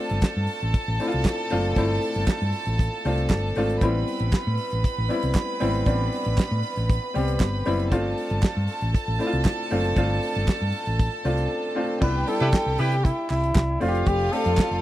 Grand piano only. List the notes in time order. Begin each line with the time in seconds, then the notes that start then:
Already playing: A3 C4 D4 F4
1.00 A3 C4 D4 E4
1.07 F4
1.50 A3 C4 D4 F4
1.76 A3 C4 D4 E4
3.05 A3 C4 D4 F4
3.56 A3 C4 D4 F4
3.82 G3 B3 C4 E4
5.09 G3 B3 C4 E4
5.60 G3 B3 C4 E4
5.86 G3 B3 C4 D4
7.14 G3 B3 C4 G4
7.65 G3 B3 C4 E4
7.91 A3 C4 D4 F4
9.19 A3 C4 D4 E4
9.27 F4
9.71 A3 C4 D4 F4
9.97 A3 C4 D4 F4
11.24 A3 C4 D4 F4
11.75 A3 C4 D4 F4
12.00 G3 B3 D4 E4
12.27 G3 B3 D4 E4
13.80 A3 C4 D4 F4
13.88 G4
14.32 A3 C4 D4 G4